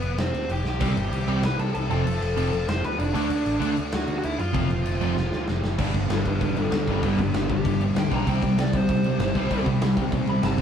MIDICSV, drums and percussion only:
0, 0, Header, 1, 2, 480
1, 0, Start_track
1, 0, Tempo, 310398
1, 1253, Time_signature, 4, 2, 24, 8
1, 16417, End_track
2, 0, Start_track
2, 0, Title_t, "Drums"
2, 36, Note_on_c, 9, 49, 65
2, 191, Note_off_c, 9, 49, 0
2, 280, Note_on_c, 9, 49, 79
2, 287, Note_on_c, 9, 38, 108
2, 434, Note_off_c, 9, 49, 0
2, 442, Note_off_c, 9, 38, 0
2, 532, Note_on_c, 9, 49, 60
2, 686, Note_off_c, 9, 49, 0
2, 765, Note_on_c, 9, 49, 79
2, 919, Note_off_c, 9, 49, 0
2, 1008, Note_on_c, 9, 38, 64
2, 1163, Note_off_c, 9, 38, 0
2, 1244, Note_on_c, 9, 49, 89
2, 1244, Note_on_c, 9, 55, 79
2, 1252, Note_on_c, 9, 36, 117
2, 1399, Note_off_c, 9, 49, 0
2, 1399, Note_off_c, 9, 55, 0
2, 1407, Note_off_c, 9, 36, 0
2, 1501, Note_on_c, 9, 49, 67
2, 1655, Note_off_c, 9, 49, 0
2, 1742, Note_on_c, 9, 49, 84
2, 1896, Note_off_c, 9, 49, 0
2, 1982, Note_on_c, 9, 49, 59
2, 2137, Note_off_c, 9, 49, 0
2, 2212, Note_on_c, 9, 49, 84
2, 2219, Note_on_c, 9, 38, 113
2, 2366, Note_off_c, 9, 49, 0
2, 2374, Note_off_c, 9, 38, 0
2, 2464, Note_on_c, 9, 49, 58
2, 2619, Note_off_c, 9, 49, 0
2, 2701, Note_on_c, 9, 49, 77
2, 2855, Note_off_c, 9, 49, 0
2, 2948, Note_on_c, 9, 49, 56
2, 3103, Note_off_c, 9, 49, 0
2, 3198, Note_on_c, 9, 49, 84
2, 3353, Note_off_c, 9, 49, 0
2, 3437, Note_on_c, 9, 49, 64
2, 3592, Note_off_c, 9, 49, 0
2, 3671, Note_on_c, 9, 49, 85
2, 3826, Note_off_c, 9, 49, 0
2, 3912, Note_on_c, 9, 49, 61
2, 4067, Note_off_c, 9, 49, 0
2, 4151, Note_on_c, 9, 49, 84
2, 4159, Note_on_c, 9, 38, 113
2, 4305, Note_off_c, 9, 49, 0
2, 4313, Note_off_c, 9, 38, 0
2, 4396, Note_on_c, 9, 49, 64
2, 4551, Note_off_c, 9, 49, 0
2, 4632, Note_on_c, 9, 49, 85
2, 4787, Note_off_c, 9, 49, 0
2, 4876, Note_on_c, 9, 49, 95
2, 5031, Note_off_c, 9, 49, 0
2, 5106, Note_on_c, 9, 49, 85
2, 5260, Note_off_c, 9, 49, 0
2, 5349, Note_on_c, 9, 49, 69
2, 5504, Note_off_c, 9, 49, 0
2, 5592, Note_on_c, 9, 49, 88
2, 5746, Note_off_c, 9, 49, 0
2, 5830, Note_on_c, 9, 49, 63
2, 5984, Note_off_c, 9, 49, 0
2, 6065, Note_on_c, 9, 49, 83
2, 6073, Note_on_c, 9, 38, 113
2, 6220, Note_off_c, 9, 49, 0
2, 6228, Note_off_c, 9, 38, 0
2, 6305, Note_on_c, 9, 49, 60
2, 6460, Note_off_c, 9, 49, 0
2, 6547, Note_on_c, 9, 49, 79
2, 6702, Note_off_c, 9, 49, 0
2, 6794, Note_on_c, 9, 49, 57
2, 6949, Note_off_c, 9, 49, 0
2, 7029, Note_on_c, 9, 36, 120
2, 7031, Note_on_c, 9, 49, 76
2, 7183, Note_off_c, 9, 36, 0
2, 7186, Note_off_c, 9, 49, 0
2, 7276, Note_on_c, 9, 49, 60
2, 7431, Note_off_c, 9, 49, 0
2, 7509, Note_on_c, 9, 49, 81
2, 7663, Note_off_c, 9, 49, 0
2, 7748, Note_on_c, 9, 49, 60
2, 7903, Note_off_c, 9, 49, 0
2, 7995, Note_on_c, 9, 38, 67
2, 8149, Note_off_c, 9, 38, 0
2, 8229, Note_on_c, 9, 38, 63
2, 8384, Note_off_c, 9, 38, 0
2, 8470, Note_on_c, 9, 38, 90
2, 8624, Note_off_c, 9, 38, 0
2, 8716, Note_on_c, 9, 38, 86
2, 8871, Note_off_c, 9, 38, 0
2, 8945, Note_on_c, 9, 49, 90
2, 8945, Note_on_c, 9, 57, 114
2, 8951, Note_on_c, 9, 36, 115
2, 9100, Note_off_c, 9, 49, 0
2, 9100, Note_off_c, 9, 57, 0
2, 9106, Note_off_c, 9, 36, 0
2, 9192, Note_on_c, 9, 36, 89
2, 9192, Note_on_c, 9, 49, 68
2, 9346, Note_off_c, 9, 49, 0
2, 9347, Note_off_c, 9, 36, 0
2, 9431, Note_on_c, 9, 49, 85
2, 9438, Note_on_c, 9, 38, 112
2, 9585, Note_off_c, 9, 49, 0
2, 9593, Note_off_c, 9, 38, 0
2, 9674, Note_on_c, 9, 36, 86
2, 9678, Note_on_c, 9, 49, 63
2, 9829, Note_off_c, 9, 36, 0
2, 9832, Note_off_c, 9, 49, 0
2, 9912, Note_on_c, 9, 49, 82
2, 9914, Note_on_c, 9, 36, 100
2, 10067, Note_off_c, 9, 49, 0
2, 10069, Note_off_c, 9, 36, 0
2, 10152, Note_on_c, 9, 49, 62
2, 10306, Note_off_c, 9, 49, 0
2, 10387, Note_on_c, 9, 49, 79
2, 10395, Note_on_c, 9, 38, 108
2, 10542, Note_off_c, 9, 49, 0
2, 10550, Note_off_c, 9, 38, 0
2, 10630, Note_on_c, 9, 49, 60
2, 10632, Note_on_c, 9, 36, 83
2, 10784, Note_off_c, 9, 49, 0
2, 10786, Note_off_c, 9, 36, 0
2, 10867, Note_on_c, 9, 49, 83
2, 10871, Note_on_c, 9, 36, 94
2, 11022, Note_off_c, 9, 49, 0
2, 11026, Note_off_c, 9, 36, 0
2, 11112, Note_on_c, 9, 36, 85
2, 11118, Note_on_c, 9, 49, 61
2, 11267, Note_off_c, 9, 36, 0
2, 11273, Note_off_c, 9, 49, 0
2, 11352, Note_on_c, 9, 49, 82
2, 11359, Note_on_c, 9, 38, 114
2, 11506, Note_off_c, 9, 49, 0
2, 11514, Note_off_c, 9, 38, 0
2, 11591, Note_on_c, 9, 36, 87
2, 11591, Note_on_c, 9, 49, 62
2, 11746, Note_off_c, 9, 36, 0
2, 11746, Note_off_c, 9, 49, 0
2, 11829, Note_on_c, 9, 49, 82
2, 11830, Note_on_c, 9, 36, 97
2, 11984, Note_off_c, 9, 36, 0
2, 11984, Note_off_c, 9, 49, 0
2, 12072, Note_on_c, 9, 49, 60
2, 12227, Note_off_c, 9, 49, 0
2, 12310, Note_on_c, 9, 49, 89
2, 12318, Note_on_c, 9, 38, 109
2, 12465, Note_off_c, 9, 49, 0
2, 12473, Note_off_c, 9, 38, 0
2, 12547, Note_on_c, 9, 49, 61
2, 12549, Note_on_c, 9, 36, 83
2, 12701, Note_off_c, 9, 49, 0
2, 12704, Note_off_c, 9, 36, 0
2, 12790, Note_on_c, 9, 36, 95
2, 12794, Note_on_c, 9, 49, 91
2, 12944, Note_off_c, 9, 36, 0
2, 12948, Note_off_c, 9, 49, 0
2, 13028, Note_on_c, 9, 36, 88
2, 13037, Note_on_c, 9, 49, 69
2, 13183, Note_off_c, 9, 36, 0
2, 13192, Note_off_c, 9, 49, 0
2, 13272, Note_on_c, 9, 49, 88
2, 13280, Note_on_c, 9, 38, 116
2, 13427, Note_off_c, 9, 49, 0
2, 13435, Note_off_c, 9, 38, 0
2, 13504, Note_on_c, 9, 49, 68
2, 13506, Note_on_c, 9, 36, 88
2, 13659, Note_off_c, 9, 49, 0
2, 13661, Note_off_c, 9, 36, 0
2, 13743, Note_on_c, 9, 49, 83
2, 13746, Note_on_c, 9, 36, 96
2, 13898, Note_off_c, 9, 49, 0
2, 13901, Note_off_c, 9, 36, 0
2, 13981, Note_on_c, 9, 49, 65
2, 14136, Note_off_c, 9, 49, 0
2, 14222, Note_on_c, 9, 49, 83
2, 14230, Note_on_c, 9, 38, 113
2, 14376, Note_off_c, 9, 49, 0
2, 14384, Note_off_c, 9, 38, 0
2, 14462, Note_on_c, 9, 36, 87
2, 14462, Note_on_c, 9, 49, 61
2, 14616, Note_off_c, 9, 49, 0
2, 14617, Note_off_c, 9, 36, 0
2, 14703, Note_on_c, 9, 36, 103
2, 14706, Note_on_c, 9, 49, 85
2, 14857, Note_off_c, 9, 36, 0
2, 14860, Note_off_c, 9, 49, 0
2, 14939, Note_on_c, 9, 49, 61
2, 14941, Note_on_c, 9, 36, 89
2, 15094, Note_off_c, 9, 49, 0
2, 15096, Note_off_c, 9, 36, 0
2, 15178, Note_on_c, 9, 49, 87
2, 15186, Note_on_c, 9, 38, 118
2, 15333, Note_off_c, 9, 49, 0
2, 15340, Note_off_c, 9, 38, 0
2, 15417, Note_on_c, 9, 36, 92
2, 15422, Note_on_c, 9, 49, 63
2, 15571, Note_off_c, 9, 36, 0
2, 15576, Note_off_c, 9, 49, 0
2, 15652, Note_on_c, 9, 36, 104
2, 15654, Note_on_c, 9, 49, 78
2, 15806, Note_off_c, 9, 36, 0
2, 15809, Note_off_c, 9, 49, 0
2, 15884, Note_on_c, 9, 49, 59
2, 16039, Note_off_c, 9, 49, 0
2, 16127, Note_on_c, 9, 49, 85
2, 16135, Note_on_c, 9, 38, 109
2, 16282, Note_off_c, 9, 49, 0
2, 16289, Note_off_c, 9, 38, 0
2, 16366, Note_on_c, 9, 36, 88
2, 16368, Note_on_c, 9, 49, 65
2, 16417, Note_off_c, 9, 36, 0
2, 16417, Note_off_c, 9, 49, 0
2, 16417, End_track
0, 0, End_of_file